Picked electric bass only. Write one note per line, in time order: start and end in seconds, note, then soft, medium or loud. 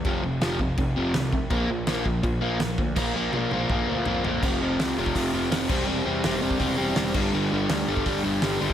0.05 0.21 F1 medium
0.23 0.39 F1 medium
0.42 0.58 F1 medium
0.59 0.76 F1 medium
0.78 0.94 F1 medium
0.97 1.13 F1 medium
1.14 1.47 C2 medium
1.50 1.67 A#1 medium
1.69 1.86 A#1 loud
1.88 2.04 A#1 medium
2.05 2.22 A#1 medium
2.23 2.40 A#1 medium
2.42 2.58 A#1 medium
2.59 2.76 A#1 medium
2.78 2.95 D2 medium
2.96 3.09 A#1 loud
3.15 3.28 A#1 medium
3.33 3.45 A#1 medium
3.51 3.64 A#1 medium
3.69 3.82 A#1 medium
3.89 4.01 D2 medium
4.07 4.19 F2 loud
4.26 4.38 F2 medium
4.42 4.57 F1 loud
4.60 4.75 F1 loud
4.79 4.93 C2 medium
4.97 5.11 F1 medium
5.15 5.29 F1 medium
5.33 5.48 F1 medium
5.51 5.65 F1 medium
5.69 5.84 E1 medium
5.87 6.01 E1 medium
6.06 6.20 E2 medium
6.24 6.38 E1 loud
6.43 6.57 E1 medium
6.60 6.74 E1 loud
6.79 6.93 E1 medium
6.98 7.12 E1 medium
7.14 7.29 G1 medium
7.33 7.47 G1 loud
7.51 7.66 G1 medium
7.70 7.84 D2 loud
7.88 8.02 G1 medium
8.06 8.20 G1 medium
8.25 8.39 G1 loud
8.43 8.57 G1 medium
8.62 8.73 G1 medium